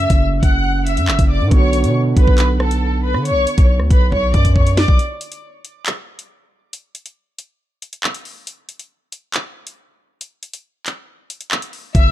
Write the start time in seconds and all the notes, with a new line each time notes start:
Already playing: C#3 A3 F#4 E5 E6
0.10 F#1, kick, closed hi-hat
0.43 F#1 F#5 F#6, kick, closed hi-hat
0.86 E5 E6, closed hi-hat
0.97 F#2, closed hi-hat
1.08 F#1, clap
1.19 F#1, kick, closed hi-hat
1.30 D5 D6
1.40 A2
1.48 B1 D3 B3 C#5, kick, closed hi-hat
1.52 F#4 C#6
1.73 closed hi-hat
1.84 B2, closed hi-hat
2.16 B1 B4 B5, kick, closed hi-hat
2.28 kick
2.38 clap, closed hi-hat
2.60 A4 A5, cross-stick
2.71 closed hi-hat
3.04 B4 B5
3.14 D3, cross-stick
3.25 C#5 C#6, closed hi-hat
3.31 B1
3.47 closed hi-hat
3.58 B1, kick, closed hi-hat
3.80 D2, cross-stick
3.90 B1 B4 B5, kick, closed hi-hat
4.12 B1 C#5 C#6, kick
4.34 F#2 D5 D6, kick, closed hi-hat
4.45 kick, closed hi-hat
4.56 C#5 C#6, kick
4.67 closed hi-hat
4.77 D5 D6, snare
4.88 B1, kick
4.99 closed hi-hat
5.21 closed hi-hat
5.32 closed hi-hat
5.65 closed hi-hat
5.86 clap, closed hi-hat
6.19 closed hi-hat
6.73 closed hi-hat
6.95 closed hi-hat
7.06 closed hi-hat
7.38 closed hi-hat
7.82 closed hi-hat
7.93 closed hi-hat
8.04 clap
8.14 closed hi-hat
8.25 open hi-hat
8.47 closed hi-hat
8.69 closed hi-hat
8.79 closed hi-hat
9.12 closed hi-hat
9.34 clap, closed hi-hat
9.67 closed hi-hat
10.21 closed hi-hat
10.43 closed hi-hat
10.53 closed hi-hat
10.86 clap, closed hi-hat
11.30 closed hi-hat
11.41 closed hi-hat
11.51 clap
11.62 closed hi-hat
11.73 open hi-hat
11.95 F#1 E5 E6, kick, closed hi-hat